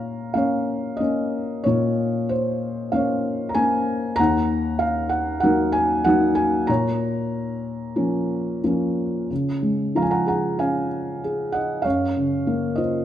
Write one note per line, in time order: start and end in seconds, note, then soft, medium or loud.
0.00 1.61 A#2 soft
0.00 0.33 C#5 medium
0.00 0.32 F5 medium
0.00 3.49 A#5 medium
0.34 0.98 A#3 soft
0.34 0.98 C#4 soft
0.34 1.62 C#5 medium
0.34 1.01 F5 medium
0.97 1.63 A#3 soft
0.97 1.60 D#5 medium
1.01 1.64 C#4 soft
1.64 4.15 A#2 medium
1.64 2.89 F4 medium
1.64 2.31 C#5 medium
2.29 2.88 C5 medium
2.92 3.53 A#3 soft
2.92 3.54 C#4 soft
2.92 4.16 C#5 medium
2.92 3.49 F5 medium
3.49 3.55 A#5 medium
3.54 4.17 A#3 soft
3.54 4.17 C#4 soft
3.54 4.20 G#5 medium
4.16 6.65 D#2 medium
4.16 5.08 F#5 medium
4.16 4.81 A#5 loud
4.79 5.09 F5 medium
5.09 5.39 F#5 medium
5.40 6.04 F#3 soft
5.40 6.04 A#3 soft
5.40 6.04 D#4 soft
5.40 6.65 A#4 medium
5.40 5.74 F#5 medium
5.72 6.06 G#5 medium
6.04 6.67 F#3 medium
6.04 6.68 A#3 soft
6.04 6.68 D#4 medium
6.04 6.38 F#5 medium
6.35 6.65 G#5 medium
6.67 9.27 A#2 medium
6.67 8.60 C#5 medium
6.67 8.59 A#5 medium
7.96 8.61 F3 soft
7.96 8.61 A#3 soft
7.96 8.62 C#4 medium
8.64 9.29 F3 soft
8.64 9.29 A#3 soft
8.64 9.30 C#4 soft
9.30 11.81 C#3 soft
9.63 10.88 G#3 soft
9.95 11.19 F3 soft
9.95 10.03 F5 medium
9.95 10.03 A#5 medium
10.02 10.09 G#5 medium
10.11 10.27 F#5 medium
10.11 10.26 A#5 medium
10.26 11.23 G#4 soft
10.26 10.58 F#5 soft
10.26 10.58 A#5 medium
10.59 11.81 C#4 soft
10.59 11.50 F5 medium
10.59 11.56 G#5 medium
11.24 11.84 G#4 soft
11.52 11.83 D#5 medium
11.52 11.82 F#5 medium
11.82 13.05 F#2 soft
11.82 12.73 C#5 medium
11.82 12.79 F5 medium
12.16 13.05 C#3 soft
12.47 13.05 A#3 soft
12.76 13.05 F4 soft
12.76 13.05 C5 soft
12.76 13.05 D#5 medium